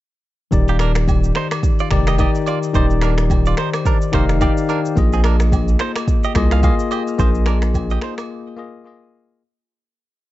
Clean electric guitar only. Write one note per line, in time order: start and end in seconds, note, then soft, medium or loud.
0.69 0.77 A#3 medium
0.69 0.77 G4 medium
0.81 0.92 D4 medium
0.81 0.91 A#4 medium
1.37 1.47 D#4 medium
1.37 1.47 C5 medium
1.80 1.88 F4 medium
1.80 1.88 D5 medium
2.08 2.16 G4 medium
2.08 2.15 D#5 medium
2.20 2.31 G4 medium
2.20 2.30 D#5 medium
2.48 2.58 F4 medium
2.48 2.58 D5 medium
2.75 2.86 D#4 medium
2.75 2.86 C5 loud
3.03 3.14 D4 medium
3.03 3.13 A#4 medium
3.47 3.55 F4 medium
3.47 3.54 D5 medium
3.59 3.69 D#4 medium
3.59 3.69 C5 medium
3.87 3.97 D4 medium
3.87 3.97 A#4 medium
4.14 4.25 D#4 medium
4.14 4.24 C5 medium
4.42 4.53 G4 medium
4.42 4.52 D5 medium
4.70 4.80 D4 medium
4.70 4.80 A#4 medium
5.14 5.21 C4 medium
5.14 5.21 G#4 medium
5.25 5.36 D4 medium
5.25 5.35 A#4 medium
5.81 5.92 D#4 medium
5.81 5.91 C5 medium
6.25 6.32 G4 medium
6.25 6.32 D#5 medium
6.52 6.60 G#4 medium
6.52 6.60 F5 medium
6.64 6.75 G#4 medium
6.64 6.74 F5 medium
6.92 7.03 G4 medium
6.92 7.02 D#5 medium
7.20 7.30 D#4 medium
7.20 7.30 C5 loud
7.47 7.58 D4 medium
7.47 7.58 A#4 medium
7.91 7.99 G4 medium
7.91 7.99 D#5 medium
8.03 8.14 D#4 medium
8.03 8.13 C5 medium